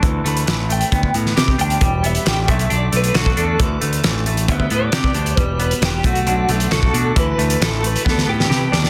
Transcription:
0.03 picked electric bass D2, overdriven electric guitar E3, kick, closed hi-hat
0.24 picked electric bass D2, overdriven electric guitar A3, clean electric guitar B5, closed hi-hat
0.37 closed hi-hat
0.47 picked electric bass A1, overdriven electric guitar E3, snare, closed hi-hat
0.69 overdriven electric guitar A3, clean electric guitar G5, closed hi-hat
0.81 closed hi-hat
0.92 picked electric bass D2, overdriven electric guitar B3, kick, closed hi-hat
1.03 kick
1.14 picked electric bass A2, overdriven electric guitar B3, closed hi-hat
1.26 snare
1.36 picked electric bass C3, overdriven electric guitar G4, snare, closed hi-hat
1.48 kick
1.58 picked electric bass D2, overdriven electric guitar D4, clean electric guitar G5, closed hi-hat
1.70 closed hi-hat
1.80 picked electric bass E1, tonewheel organ E3 G3 B3 F#4, overdriven electric guitar G3, kick, closed hi-hat
2.03 overdriven electric guitar B3, clean electric guitar E5, closed hi-hat
2.15 closed hi-hat
2.25 picked electric bass A1, overdriven electric guitar G3, clean electric guitar G5, snare, closed hi-hat
2.48 picked electric bass B1, tonewheel organ D3 A3, overdriven electric guitar A3, clean electric guitar E5, kick, closed hi-hat
2.59 closed hi-hat
2.70 picked electric bass B1, overdriven electric guitar D4, closed hi-hat
2.74 clean electric guitar D5
2.92 picked electric bass B1, overdriven electric guitar A3, closed hi-hat
2.96 clean electric guitar B4
3.04 closed hi-hat
3.14 picked electric bass B1, overdriven electric guitar F#4, snare, closed hi-hat
3.18 clean electric guitar A4
3.26 kick
3.37 picked electric bass E2, overdriven electric guitar D4, closed hi-hat
3.59 picked electric bass D2, overdriven electric guitar E3, tonewheel organ E3 D4, kick, closed hi-hat
3.81 picked electric bass D2, overdriven electric guitar A3, closed hi-hat
3.93 closed hi-hat
4.03 picked electric bass A1, overdriven electric guitar E3, snare, closed hi-hat
4.26 overdriven electric guitar A3, closed hi-hat
4.37 closed hi-hat
4.48 picked electric bass D2, tonewheel organ D3 G3 B3 G4, overdriven electric guitar B3, clean electric guitar E5, kick, closed hi-hat
4.60 kick
4.70 picked electric bass A2, overdriven electric guitar B3, closed hi-hat
4.74 clean electric guitar D5
4.92 picked electric bass C3, overdriven electric guitar G4, snare, closed hi-hat
5.04 kick
5.14 picked electric bass D2, overdriven electric guitar D4, closed hi-hat
5.26 closed hi-hat
5.37 picked electric bass E1, tonewheel organ E3 F#4, overdriven electric guitar G3, clean electric guitar B4, kick, closed hi-hat
5.59 overdriven electric guitar B3, clean electric guitar B4, closed hi-hat
5.71 closed hi-hat
5.82 picked electric bass E1, overdriven electric guitar G3, clean electric guitar G4, snare, closed hi-hat
6.04 picked electric bass B1, tonewheel organ D3 A3, overdriven electric guitar A3, clean electric guitar F#4, kick, closed hi-hat
6.15 closed hi-hat
6.26 picked electric bass B1, overdriven electric guitar D4, closed hi-hat
6.49 picked electric bass B1, overdriven electric guitar A3, closed hi-hat
6.60 closed hi-hat
6.71 picked electric bass B1, overdriven electric guitar F#4, clean electric guitar A4, snare, closed hi-hat
6.83 kick
6.93 picked electric bass B2, overdriven electric guitar D4, closed hi-hat
7.16 picked electric bass D2, overdriven electric guitar E3, tonewheel organ A3 E4 F#4, clean electric guitar B4, kick, closed hi-hat
7.38 picked electric bass D2, overdriven electric guitar A3, closed hi-hat
7.50 closed hi-hat
7.61 picked electric bass A1, overdriven electric guitar E3, clean electric guitar A4, snare, closed hi-hat
7.83 overdriven electric guitar A3, clean electric guitar B4, closed hi-hat
7.96 closed hi-hat
8.05 picked electric bass D2, tonewheel organ D3 G3 B3 G4, overdriven electric guitar B3, kick, snare
8.09 clean electric guitar A4
8.18 snare
8.27 picked electric bass A2, overdriven electric guitar B3, clean electric guitar G4
8.40 snare
8.50 picked electric bass C3, overdriven electric guitar G4, clean electric guitar B4, snare
8.72 picked electric bass D#2, overdriven electric guitar D4, clean electric guitar D5, snare
8.83 clean electric guitar D5, snare

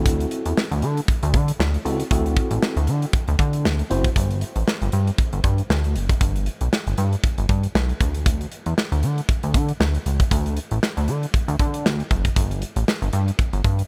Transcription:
Already playing: analog synth bass D2, tine electric piano C4 E4 F#4 A4
0.06 kick, closed hi-hat
0.20 closed hi-hat
0.31 closed hi-hat
0.46 analog synth bass E2, closed hi-hat
0.57 snare
0.71 analog synth bass D2, closed hi-hat
0.82 analog synth bass D3, closed hi-hat
0.97 closed hi-hat
1.08 kick, closed hi-hat
1.23 analog synth bass D2, closed hi-hat
1.34 analog synth bass D3, kick, closed hi-hat
1.48 closed hi-hat
1.60 analog synth bass D2, snare
1.74 closed hi-hat
1.85 analog synth bass C#2, tine electric piano C4 E4 F#4 A4, closed hi-hat
2.00 closed hi-hat
2.11 analog synth bass D2, tine electric piano C4 E4 F#4 A4, kick, closed hi-hat
2.26 closed hi-hat
2.36 kick, closed hi-hat
2.51 analog synth bass A1, closed hi-hat
2.63 snare
2.76 analog synth bass D2, closed hi-hat
2.87 analog synth bass D3, closed hi-hat
3.02 closed hi-hat
3.13 kick, closed hi-hat
3.28 analog synth bass D2, closed hi-hat
3.39 analog synth bass D3, kick, closed hi-hat
3.53 closed hi-hat
3.65 analog synth bass D2, snare
3.79 closed hi-hat
3.90 analog synth bass F#1, tine electric piano C4 E4 F#4 C5, closed hi-hat
4.04 kick, closed hi-hat
4.16 analog synth bass G1, kick, closed hi-hat
4.31 closed hi-hat
4.41 closed hi-hat
4.56 analog synth bass A1, closed hi-hat
4.68 snare
4.82 analog synth bass G1, closed hi-hat
4.92 analog synth bass G2, closed hi-hat
5.07 closed hi-hat
5.18 kick, closed hi-hat
5.33 analog synth bass G1, closed hi-hat
5.44 analog synth bass G2, kick, closed hi-hat
5.58 closed hi-hat
5.70 analog synth bass D2, snare
5.84 closed hi-hat
5.96 analog synth bass F#1, closed hi-hat
6.09 kick, closed hi-hat
6.21 analog synth bass G1, kick, closed hi-hat
6.36 closed hi-hat
6.46 closed hi-hat
6.61 analog synth bass B1, closed hi-hat
6.73 snare
6.87 analog synth bass G1, closed hi-hat
6.98 analog synth bass G2, closed hi-hat
7.13 closed hi-hat
7.24 kick, closed hi-hat
7.38 analog synth bass G1, closed hi-hat
7.49 analog synth bass G2, kick, closed hi-hat
7.63 closed hi-hat
7.75 analog synth bass B1, snare
7.89 closed hi-hat
8.01 analog synth bass D2, kick, closed hi-hat
8.15 closed hi-hat
8.26 kick, closed hi-hat
8.41 closed hi-hat
8.52 closed hi-hat
8.66 analog synth bass E2, closed hi-hat
8.78 snare
8.92 analog synth bass D2, closed hi-hat
9.03 analog synth bass D3, closed hi-hat
9.18 closed hi-hat
9.29 kick, closed hi-hat
9.43 analog synth bass D2, closed hi-hat
9.54 analog synth bass D3, kick, closed hi-hat
9.69 closed hi-hat
9.80 analog synth bass D2, snare
9.95 closed hi-hat
10.06 analog synth bass C#2, closed hi-hat
10.20 kick, closed hi-hat
10.31 analog synth bass D2, kick, closed hi-hat
10.46 closed hi-hat
10.57 closed hi-hat
10.71 analog synth bass A1, closed hi-hat
10.83 snare
10.97 analog synth bass D2, closed hi-hat
11.08 analog synth bass D3, closed hi-hat
11.23 closed hi-hat
11.34 kick, closed hi-hat
11.48 analog synth bass D2, closed hi-hat
11.59 analog synth bass D3, kick, closed hi-hat
11.74 closed hi-hat
11.85 analog synth bass D2, snare
12.00 closed hi-hat
12.11 analog synth bass F#1, kick, closed hi-hat
12.25 kick, closed hi-hat
12.36 analog synth bass G1, kick, closed hi-hat
12.51 closed hi-hat
12.62 closed hi-hat
12.76 analog synth bass A1, closed hi-hat
12.88 snare
13.02 analog synth bass G1, closed hi-hat
13.13 analog synth bass G2, closed hi-hat
13.28 closed hi-hat
13.39 kick, closed hi-hat
13.53 analog synth bass G1, closed hi-hat
13.64 analog synth bass G2, kick, closed hi-hat
13.79 closed hi-hat

